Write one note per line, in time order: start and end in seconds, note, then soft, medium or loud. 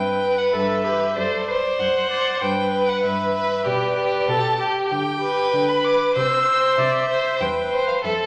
0.00 0.43 G2 medium
0.00 0.55 B4 soft
0.00 0.39 G5 medium
0.22 0.84 B4 soft
0.38 0.53 F#5 medium
0.53 1.06 G2 soft
0.53 0.86 A4 soft
0.53 1.17 E5 medium
0.84 1.16 G4 soft
0.84 1.16 B4 soft
1.16 1.69 F#2 medium
1.16 1.47 A4 soft
1.16 1.47 C5 soft
1.16 1.81 D5 medium
1.47 1.56 B4 soft
1.47 2.09 C5 soft
1.79 2.31 F#2 soft
1.79 2.10 C5 soft
1.79 2.41 F#5 medium
2.10 2.41 C5 soft
2.10 2.43 D5 soft
2.42 2.93 G2 medium
2.42 3.66 B4 medium
2.42 2.90 G5 medium
2.73 3.33 B4 soft
2.89 3.03 F#5 medium
3.04 3.56 G2 soft
3.04 3.68 E5 medium
3.35 3.65 B4 soft
3.66 4.18 B2 medium
3.66 3.96 G4 soft
3.66 4.31 B4 soft
3.66 4.29 D5 medium
3.97 4.58 G4 soft
4.28 4.81 B2 medium
4.28 4.60 A4 soft
4.28 4.59 A5 medium
4.59 4.90 G4 soft
4.59 5.52 G4 soft
4.91 5.43 D3 medium
4.91 5.70 G5 medium
5.22 5.83 B4 soft
5.53 6.05 D3 medium
5.53 6.18 B4 medium
5.69 5.86 B5 medium
5.84 6.15 B4 soft
5.84 6.16 D6 medium
6.16 6.68 C3 medium
6.16 6.46 C5 soft
6.16 6.80 C5 medium
6.16 6.77 E6 medium
6.47 7.08 C5 soft
6.78 7.30 C3 medium
6.78 7.09 D5 medium
6.78 7.42 E5 medium
7.09 7.40 C5 soft
7.09 7.43 C5 soft
7.41 7.94 E2 medium
7.41 8.04 B4 medium
7.41 7.87 G5 medium
7.72 8.03 C5 soft
7.88 7.94 F5 soft
8.04 8.26 F2 soft
8.04 8.26 A4 soft
8.04 8.12 E5 medium